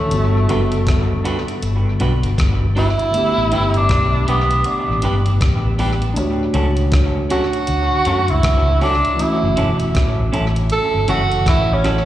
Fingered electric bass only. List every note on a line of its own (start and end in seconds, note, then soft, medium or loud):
0.12 0.46 G1 loud
0.50 1.21 F#1 loud
1.63 1.84 G1 medium
2.01 2.22 B1 medium
2.24 2.37 G1 medium
2.39 2.95 G1 medium
3.38 3.51 A1 loud
3.52 3.87 G1 medium
3.89 4.25 B1 medium
4.28 4.63 B1 medium
4.89 5.02 A1 medium
5.03 5.38 G1 medium
5.41 6.17 A1 loud
6.17 6.52 D2 loud
6.55 7.26 C#2 loud
7.68 7.90 D2 loud
8.06 8.27 F#2 medium
8.30 8.43 C#2 loud
8.44 9.01 C#2 medium
9.43 9.56 F#1 loud
9.58 9.93 E1 medium
9.95 10.30 A1 loud
10.34 10.68 A1 loud
10.95 11.08 G1 medium
11.09 11.44 F#1 medium
11.46 12.05 A1 loud